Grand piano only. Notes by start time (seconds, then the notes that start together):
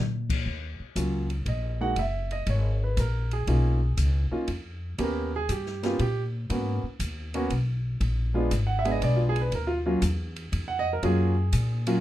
0.96 F#3 A#3 C#4 F4
1.48 D#5
1.81 G#3 A#3 D#4 F#4 F#5
1.99 E5
2.32 D#5
2.49 C#5
2.84 B4
3.00 A#4
3.33 G#4
3.48 A#3 C#4 D#4 F4
4.31 A#3 C#4 D#4 F4
4.98 A#3 B3 C#4 G4
5.03 A#4
5.36 G#4
5.51 G4
5.83 A#3 B3 C#4 F4 G4
6.01 G4
6.50 A#3 B3 C#4 F#4
7.34 A#3 B3 C#4 F#4
8.34 G#3 B3 D4 F4
8.67 F#5
8.79 E5
8.85 G#3 B3 D4 G#4
8.91 D#5
9.03 D5
9.16 F4
9.29 G#4
9.41 B4
9.55 A#4
9.67 F4
9.86 F#3 A#3 C#4 F4
10.68 F#5
10.79 D#5
10.93 A#4
11.03 F#3 A#3 C#4 F4 G#4
11.87 F#3 A#3 C#4 F4